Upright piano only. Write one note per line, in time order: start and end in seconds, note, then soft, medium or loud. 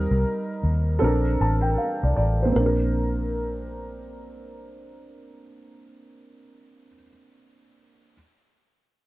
0.00 0.66 G3 medium
0.00 0.67 C4 medium
0.00 0.67 D#4 medium
0.00 0.68 A#4 loud
0.99 1.67 C4 medium
0.99 1.68 D4 medium
0.99 1.66 A4 medium
1.04 1.69 A#4 medium
1.41 1.76 A5 medium
1.61 1.76 G5 medium
1.78 2.01 F5 medium
2.04 2.15 D5 medium
2.16 2.52 D5 medium
2.42 6.87 A#3 medium
2.42 2.78 C5 medium
2.52 6.93 C4 medium
2.59 7.00 D4 medium
2.66 7.07 A#4 medium